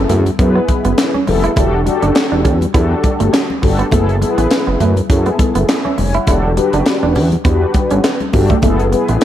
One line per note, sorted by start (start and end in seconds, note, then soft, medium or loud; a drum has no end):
0.00 0.22 B3 medium
0.00 0.22 E4 medium
0.00 0.22 G#4 medium
0.00 0.22 A4 medium
0.09 0.31 F#2 loud
0.09 0.23 A3 medium
0.09 closed hi-hat medium
0.09 muted conga soft
0.09 low conga medium
0.26 closed hi-hat medium
0.26 high conga medium
0.39 0.60 F#2 loud
0.39 1.10 B3 medium
0.39 1.10 E4 medium
0.39 1.10 G#4 medium
0.39 1.11 B4 medium
0.39 kick loud
0.39 closed hi-hat medium
0.39 muted conga soft
0.56 0.66 B3 medium
0.68 muted clean electric guitar stroke soft
0.68 kick medium
0.68 closed hi-hat medium
0.68 high conga medium
0.85 0.94 F#1 medium
0.85 0.95 B3 medium
0.85 closed hi-hat medium
0.98 snare loud
0.98 clap medium
0.98 closed hi-hat loud
1.14 1.25 C#4 medium
1.14 high conga medium
1.27 1.48 F1 medium
1.27 1.51 B3 medium
1.27 1.52 E4 medium
1.27 1.52 G#4 medium
1.27 1.52 A4 medium
1.27 muted clean electric guitar stroke soft
1.27 open hi-hat medium
1.27 high conga medium
1.27 low conga medium
1.44 1.54 E4 medium
1.44 closed hi-hat soft
1.56 1.89 E1 loud
1.56 1.81 D4 medium
1.56 1.70 E4 medium
1.56 1.81 F#4 medium
1.56 1.81 G4 medium
1.56 1.81 A4 loud
1.56 kick loud
1.56 closed hi-hat loud
1.56 low conga medium
1.86 2.57 D4 medium
1.86 2.57 F#4 medium
1.86 2.57 G4 medium
1.86 2.58 A4 medium
1.86 muted clean electric guitar stroke soft
1.86 closed hi-hat medium
1.86 muted conga soft
1.86 high conga medium
2.02 2.12 F#1 loud
2.02 2.13 D4 medium
2.02 closed hi-hat medium
2.15 muted clean electric guitar stroke soft
2.15 snare loud
2.15 clap medium
2.15 closed hi-hat medium
2.32 2.47 E1 medium
2.32 2.42 D4 medium
2.45 2.66 E2 loud
2.45 2.58 C#4 medium
2.45 kick medium
2.45 closed hi-hat medium
2.45 muted conga soft
2.45 low conga medium
2.61 closed hi-hat medium
2.61 high conga medium
2.74 2.95 E2 loud
2.74 2.88 B3 medium
2.74 3.45 D4 medium
2.74 3.45 F#4 medium
2.74 3.46 G4 medium
2.74 3.46 A4 medium
2.74 kick loud
2.74 closed hi-hat medium
3.04 muted clean electric guitar stroke soft
3.04 kick medium
3.04 closed hi-hat medium
3.04 high conga medium
3.20 3.30 G1 medium
3.20 3.31 A3 medium
3.20 closed hi-hat medium
3.33 3.46 C#4 medium
3.33 snare loud
3.33 clap medium
3.33 closed hi-hat loud
3.33 muted conga soft
3.50 high conga medium
3.62 3.84 G1 loud
3.62 3.87 D4 medium
3.62 3.87 F#4 medium
3.62 3.87 G4 medium
3.62 3.87 A4 loud
3.62 muted clean electric guitar stroke soft
3.62 kick medium
3.62 open hi-hat medium
3.62 high conga medium
3.62 low conga medium
3.79 3.89 B3 medium
3.79 closed hi-hat soft
3.91 4.25 F#1 loud
3.91 4.05 A3 medium
3.91 4.16 B3 medium
3.91 4.16 E4 medium
3.91 4.16 G#4 medium
3.91 4.16 A4 loud
3.91 kick loud
3.91 closed hi-hat medium
3.91 low conga medium
4.09 closed hi-hat soft
4.21 4.92 B3 medium
4.21 4.92 E4 medium
4.21 4.93 G#4 medium
4.21 4.29 A4 medium
4.21 muted clean electric guitar stroke soft
4.21 closed hi-hat medium
4.21 muted conga soft
4.21 high conga medium
4.28 4.96 B4 loud
4.38 4.47 A1 medium
4.38 4.48 B3 medium
4.38 closed hi-hat medium
4.51 muted clean electric guitar stroke soft
4.51 snare loud
4.51 clap medium
4.51 closed hi-hat medium
4.51 muted conga soft
4.67 4.77 F#1 loud
4.67 4.78 B3 medium
4.80 5.01 F#2 loud
4.80 4.94 A3 medium
4.80 closed hi-hat medium
4.80 low conga medium
4.97 closed hi-hat soft
4.97 high conga medium
5.09 5.31 F#2 loud
5.09 5.81 B3 medium
5.09 5.81 E4 medium
5.09 5.81 G#4 medium
5.09 5.81 A4 medium
5.09 kick loud
5.09 closed hi-hat medium
5.09 muted conga soft
5.26 5.37 B3 medium
5.26 closed hi-hat soft
5.39 muted clean electric guitar stroke soft
5.39 kick medium
5.39 closed hi-hat medium
5.39 muted conga soft
5.39 high conga medium
5.55 5.65 F#1 medium
5.55 5.66 B3 medium
5.55 closed hi-hat medium
5.69 5.97 B4 medium
5.69 5.97 E5 medium
5.69 snare loud
5.69 clap loud
5.69 closed hi-hat loud
5.85 5.95 C#4 medium
5.85 high conga medium
5.98 6.19 F1 loud
5.98 6.14 C#5 medium
5.98 6.14 G#5 medium
5.98 muted clean electric guitar stroke soft
5.98 open hi-hat medium
5.98 muted conga soft
5.98 high conga medium
5.98 low conga medium
6.14 6.25 E4 medium
6.14 6.43 C#5 medium
6.14 6.43 F#5 medium
6.14 closed hi-hat soft
6.27 6.60 E1 loud
6.27 6.51 D4 medium
6.27 6.41 E4 medium
6.27 6.52 F#4 medium
6.27 6.52 G4 medium
6.27 6.52 A4 loud
6.27 kick loud
6.27 closed hi-hat medium
6.27 low conga medium
6.57 7.28 D4 medium
6.57 7.28 F#4 medium
6.57 7.28 G4 medium
6.57 7.28 B4 medium
6.57 muted clean electric guitar stroke soft
6.57 closed hi-hat medium
6.57 muted conga soft
6.57 high conga medium
6.73 6.83 F#1 loud
6.73 6.84 D4 medium
6.73 closed hi-hat medium
6.86 muted clean electric guitar stroke soft
6.86 snare loud
6.86 clap medium
6.86 closed hi-hat medium
6.86 muted conga soft
7.03 7.17 E1 loud
7.03 7.13 D4 medium
7.15 7.37 E2 loud
7.15 7.29 C#4 medium
7.15 open hi-hat medium
7.15 low conga medium
7.32 closed hi-hat soft
7.32 high conga medium
7.45 7.66 E2 loud
7.45 7.58 B3 medium
7.45 8.16 D4 medium
7.45 8.16 F#4 medium
7.45 8.16 G4 medium
7.45 8.17 B4 medium
7.45 kick loud
7.45 closed hi-hat medium
7.74 muted clean electric guitar stroke soft
7.74 kick medium
7.74 closed hi-hat medium
7.74 muted conga soft
7.74 high conga medium
7.91 8.00 G1 medium
7.91 8.01 C#4 medium
7.91 closed hi-hat medium
8.04 8.17 B3 medium
8.04 snare loud
8.04 clap loud
8.04 closed hi-hat medium
8.20 closed hi-hat soft
8.20 high conga medium
8.33 8.55 G1 medium
8.33 8.57 D4 medium
8.33 8.57 F#4 medium
8.33 8.57 G4 medium
8.33 8.58 A4 medium
8.33 muted clean electric guitar stroke soft
8.33 kick medium
8.33 open hi-hat medium
8.33 muted conga soft
8.33 high conga medium
8.33 low conga medium
8.50 8.60 A3 medium
8.50 kick medium
8.50 closed hi-hat soft
8.62 8.95 F#1 loud
8.62 8.76 A3 medium
8.62 8.87 B3 medium
8.62 8.87 E4 medium
8.62 8.87 G#4 medium
8.62 8.87 A4 loud
8.62 kick loud
8.62 closed hi-hat medium
8.62 low conga medium
8.79 closed hi-hat soft
8.92 9.24 B3 medium
8.92 9.24 E4 medium
8.92 9.24 G#4 medium
8.92 9.24 B4 medium
8.92 muted clean electric guitar stroke soft
8.92 closed hi-hat medium
8.92 high conga medium
9.08 9.18 A1 medium
9.08 9.19 B3 medium
9.08 closed hi-hat medium
9.21 closed hi-hat medium
9.21 muted conga soft